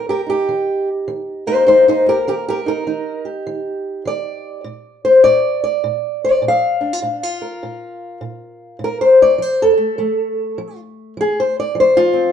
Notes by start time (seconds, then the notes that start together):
Already playing: D#3
0.09 G4 A#4
0.27 D#4 G4
0.49 D#3
1.08 D#3
1.47 A#3 D#4 C5
1.66 D#3 D#4 C5
1.88 D#4 C5
2.06 A#3 G4 A#4
2.27 D#3 G4 A#4
2.48 G4 A#4
2.66 D#4 A#4
2.87 D#3 D#4
3.25 G4
3.47 D#3
4.05 D#3 D5
4.64 A#2
5.05 C5
5.24 A#2 D5
5.64 D5
5.84 A#2
6.25 D5
6.42 A#2
6.48 F5
6.81 D4
6.93 F4
7.02 A#2 D4
7.23 F4
7.42 A#4
7.63 A#2
8.21 A#2
8.79 A#2
8.84 A#4
9.01 C5
9.22 D5
9.38 F3 C5
9.62 A4
9.77 A3
9.98 F3 A3
10.58 F3
11.17 F3 G#4
11.40 C5
11.60 D5
11.75 F3
11.80 C5
11.97 F4
12.13 C4